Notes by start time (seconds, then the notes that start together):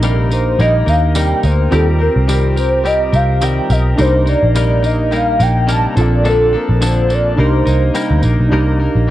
Already playing: A#1 D4 D#4 G4 A#4
0.02 C3 G3 A#3 D#4 A#4, tambourine
0.31 A#3 D#4 A#4 C5, tambourine
0.59 A#1 G3 A#3 D#4 A#4 D#5, tambourine
0.86 D#2 A#3 D#4 A#4 F5, tambourine
1.15 C3 G3 A#3 D#4 A#4 G5, tambourine
1.43 D2 A#3 D#4 A#4 C5, tambourine
1.70 D#2 D#3 G3 C4 F4 G4 A4 A#4, tambourine
1.75 A#4
1.98 C4 G4 A#4
2.16 C2
2.28 D#3 G3 C4 G4 A#4, tambourine
2.56 C4 G4 A#4 C5, tambourine
2.84 G3 C4 G4 A#4 D#5, tambourine
3.13 C2 C4 G4 A#4 F5, tambourine
3.41 D#3 G3 C4 G4 A#4 G5, tambourine
3.70 B1 C4 G4 A#4 D#5, tambourine
3.96 C2 C3 G3 A#3 D4 D#4 G4 A#4, tambourine
4.01 A#4 C5
4.26 A#3 D#4 A#4 D5, tambourine
4.43 A#1
4.55 C3 G3 A#3 D#4 A#4, tambourine
4.83 A#3 D#4 A#4 D#5, tambourine
5.11 G3 A#3 D#4 A#4 F5, tambourine
5.39 A#1 A#3 D#4 A#4 G5, tambourine
5.67 C3 G3 A#3 D#4 A#4, tambourine
5.71 A5
5.94 A#1 A#3 C4 D4 F4 A4, tambourine
5.99 F3 A4 D5
6.24 A#2 D3 F3 A#3 D4 A4, tambourine
6.53 F3 A#3 D4 A4 A#4
6.69 A#1
6.81 A#2 D3 F3 A#3 D4 A4, tambourine
6.85 C5
7.09 F3 A#3 D4 A4, tambourine
7.14 D5
7.36 C2 G3 A#3 D4 D#4 G4
7.40 A#4 C5
7.65 C2 A#3 D#4 A#4, tambourine
7.94 C3 G3 A#3 D#4 A#4, tambourine
8.11 D2
8.22 A#1 A#3 D#4 A#4, tambourine
8.39 B1
8.49 C2 C3 G3 D4 D#4 G4
8.53 A#3 D#4 A#4
8.80 A#3 D#4 A#4
8.95 A#1